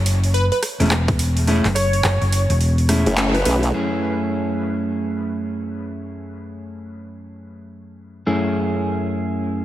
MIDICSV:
0, 0, Header, 1, 6, 480
1, 0, Start_track
1, 0, Key_signature, 3, "minor"
1, 0, Tempo, 566038
1, 1251, Time_signature, 4, 2, 24, 8
1, 8182, End_track
2, 0, Start_track
2, 0, Title_t, "Digital synth lead"
2, 0, Program_c, 0, 84
2, 289, Note_on_c, 0, 71, 90
2, 384, Note_off_c, 0, 71, 0
2, 440, Note_on_c, 0, 71, 72
2, 498, Note_off_c, 0, 71, 0
2, 1485, Note_on_c, 0, 73, 96
2, 2171, Note_off_c, 0, 73, 0
2, 2835, Note_on_c, 0, 71, 91
2, 2896, Note_off_c, 0, 71, 0
2, 2926, Note_on_c, 0, 71, 82
2, 3023, Note_off_c, 0, 71, 0
2, 8182, End_track
3, 0, Start_track
3, 0, Title_t, "Clean electric guitar"
3, 0, Program_c, 1, 27
3, 676, Note_on_c, 1, 57, 90
3, 681, Note_on_c, 1, 61, 87
3, 683, Note_on_c, 1, 68, 99
3, 688, Note_on_c, 1, 64, 88
3, 778, Note_off_c, 1, 61, 0
3, 778, Note_off_c, 1, 64, 0
3, 778, Note_off_c, 1, 68, 0
3, 779, Note_off_c, 1, 57, 0
3, 1249, Note_on_c, 1, 57, 91
3, 1252, Note_on_c, 1, 61, 82
3, 1254, Note_on_c, 1, 68, 100
3, 1256, Note_on_c, 1, 64, 86
3, 1403, Note_off_c, 1, 57, 0
3, 1403, Note_off_c, 1, 61, 0
3, 1403, Note_off_c, 1, 64, 0
3, 1403, Note_off_c, 1, 68, 0
3, 2451, Note_on_c, 1, 57, 87
3, 2451, Note_on_c, 1, 61, 75
3, 2452, Note_on_c, 1, 68, 92
3, 2453, Note_on_c, 1, 64, 76
3, 2661, Note_off_c, 1, 61, 0
3, 2661, Note_off_c, 1, 64, 0
3, 2661, Note_off_c, 1, 68, 0
3, 2662, Note_off_c, 1, 57, 0
3, 2687, Note_on_c, 1, 57, 87
3, 2691, Note_on_c, 1, 61, 74
3, 2693, Note_on_c, 1, 64, 74
3, 2697, Note_on_c, 1, 69, 91
3, 2842, Note_off_c, 1, 57, 0
3, 2842, Note_off_c, 1, 64, 0
3, 2842, Note_off_c, 1, 69, 0
3, 2843, Note_off_c, 1, 61, 0
3, 2929, Note_on_c, 1, 57, 83
3, 2931, Note_on_c, 1, 61, 77
3, 2932, Note_on_c, 1, 68, 93
3, 2934, Note_on_c, 1, 64, 77
3, 3141, Note_off_c, 1, 57, 0
3, 3141, Note_off_c, 1, 61, 0
3, 3141, Note_off_c, 1, 64, 0
3, 3141, Note_off_c, 1, 68, 0
3, 3169, Note_on_c, 1, 42, 69
3, 3170, Note_on_c, 1, 57, 63
3, 3170, Note_on_c, 1, 64, 65
3, 3173, Note_on_c, 1, 61, 64
3, 3174, Note_on_c, 1, 68, 76
3, 6988, Note_off_c, 1, 42, 0
3, 6988, Note_off_c, 1, 57, 0
3, 6988, Note_off_c, 1, 61, 0
3, 6988, Note_off_c, 1, 64, 0
3, 6988, Note_off_c, 1, 68, 0
3, 7008, Note_on_c, 1, 42, 71
3, 7009, Note_on_c, 1, 57, 67
3, 7010, Note_on_c, 1, 64, 66
3, 7012, Note_on_c, 1, 61, 62
3, 7013, Note_on_c, 1, 68, 76
3, 8182, Note_off_c, 1, 42, 0
3, 8182, Note_off_c, 1, 57, 0
3, 8182, Note_off_c, 1, 61, 0
3, 8182, Note_off_c, 1, 64, 0
3, 8182, Note_off_c, 1, 68, 0
3, 8182, End_track
4, 0, Start_track
4, 0, Title_t, "Wobble bass"
4, 0, Program_c, 2, 39
4, 2598, Note_on_c, 2, 30, 98
4, 2916, Note_off_c, 2, 30, 0
4, 2930, Note_on_c, 2, 35, 95
4, 3156, Note_off_c, 2, 35, 0
4, 8182, End_track
5, 0, Start_track
5, 0, Title_t, "Fingered electric bass"
5, 0, Program_c, 3, 33
5, 0, Note_on_c, 3, 30, 100
5, 415, Note_off_c, 3, 30, 0
5, 677, Note_on_c, 3, 28, 99
5, 1374, Note_off_c, 3, 28, 0
5, 1397, Note_on_c, 3, 30, 100
5, 1715, Note_off_c, 3, 30, 0
5, 1731, Note_on_c, 3, 30, 96
5, 1855, Note_off_c, 3, 30, 0
5, 1877, Note_on_c, 3, 30, 101
5, 2094, Note_off_c, 3, 30, 0
5, 2118, Note_on_c, 3, 28, 97
5, 2575, Note_off_c, 3, 28, 0
5, 8182, End_track
6, 0, Start_track
6, 0, Title_t, "Drums"
6, 51, Note_on_c, 9, 46, 80
6, 135, Note_off_c, 9, 46, 0
6, 200, Note_on_c, 9, 46, 30
6, 284, Note_off_c, 9, 46, 0
6, 291, Note_on_c, 9, 46, 43
6, 376, Note_off_c, 9, 46, 0
6, 439, Note_on_c, 9, 46, 23
6, 524, Note_off_c, 9, 46, 0
6, 531, Note_on_c, 9, 37, 58
6, 531, Note_on_c, 9, 46, 81
6, 616, Note_off_c, 9, 37, 0
6, 616, Note_off_c, 9, 46, 0
6, 680, Note_on_c, 9, 46, 31
6, 694, Note_off_c, 9, 46, 0
6, 694, Note_on_c, 9, 46, 27
6, 741, Note_off_c, 9, 46, 0
6, 741, Note_on_c, 9, 46, 14
6, 755, Note_off_c, 9, 46, 0
6, 755, Note_on_c, 9, 46, 13
6, 770, Note_off_c, 9, 46, 0
6, 770, Note_on_c, 9, 39, 120
6, 770, Note_on_c, 9, 46, 44
6, 855, Note_off_c, 9, 39, 0
6, 855, Note_off_c, 9, 46, 0
6, 918, Note_on_c, 9, 36, 105
6, 918, Note_on_c, 9, 46, 22
6, 1002, Note_off_c, 9, 46, 0
6, 1003, Note_off_c, 9, 36, 0
6, 1010, Note_on_c, 9, 46, 80
6, 1095, Note_off_c, 9, 46, 0
6, 1158, Note_on_c, 9, 46, 34
6, 1243, Note_off_c, 9, 46, 0
6, 1251, Note_on_c, 9, 46, 44
6, 1335, Note_off_c, 9, 46, 0
6, 1400, Note_on_c, 9, 39, 37
6, 1400, Note_on_c, 9, 46, 22
6, 1484, Note_off_c, 9, 39, 0
6, 1484, Note_off_c, 9, 46, 0
6, 1491, Note_on_c, 9, 37, 40
6, 1491, Note_on_c, 9, 46, 81
6, 1575, Note_off_c, 9, 37, 0
6, 1575, Note_off_c, 9, 46, 0
6, 1639, Note_on_c, 9, 46, 33
6, 1724, Note_off_c, 9, 46, 0
6, 1731, Note_on_c, 9, 39, 121
6, 1731, Note_on_c, 9, 46, 44
6, 1816, Note_off_c, 9, 39, 0
6, 1816, Note_off_c, 9, 46, 0
6, 1879, Note_on_c, 9, 46, 21
6, 1963, Note_off_c, 9, 46, 0
6, 1972, Note_on_c, 9, 46, 80
6, 2056, Note_off_c, 9, 46, 0
6, 2119, Note_on_c, 9, 46, 32
6, 2204, Note_off_c, 9, 46, 0
6, 2210, Note_on_c, 9, 46, 43
6, 2295, Note_off_c, 9, 46, 0
6, 2359, Note_on_c, 9, 46, 22
6, 2444, Note_off_c, 9, 46, 0
6, 2450, Note_on_c, 9, 37, 59
6, 2450, Note_on_c, 9, 46, 78
6, 2535, Note_off_c, 9, 37, 0
6, 2535, Note_off_c, 9, 46, 0
6, 2598, Note_on_c, 9, 46, 33
6, 2683, Note_off_c, 9, 46, 0
6, 2691, Note_on_c, 9, 39, 115
6, 2691, Note_on_c, 9, 46, 45
6, 2776, Note_off_c, 9, 39, 0
6, 2776, Note_off_c, 9, 46, 0
6, 2837, Note_on_c, 9, 37, 36
6, 2837, Note_on_c, 9, 46, 21
6, 2848, Note_off_c, 9, 37, 0
6, 2848, Note_on_c, 9, 37, 29
6, 2898, Note_off_c, 9, 37, 0
6, 2898, Note_on_c, 9, 37, 24
6, 2922, Note_off_c, 9, 46, 0
6, 2929, Note_off_c, 9, 37, 0
6, 2929, Note_on_c, 9, 37, 21
6, 2929, Note_on_c, 9, 46, 78
6, 2979, Note_off_c, 9, 37, 0
6, 2979, Note_on_c, 9, 37, 18
6, 3010, Note_off_c, 9, 37, 0
6, 3010, Note_on_c, 9, 37, 14
6, 3014, Note_off_c, 9, 46, 0
6, 3078, Note_on_c, 9, 46, 34
6, 3095, Note_off_c, 9, 37, 0
6, 3163, Note_off_c, 9, 46, 0
6, 8182, End_track
0, 0, End_of_file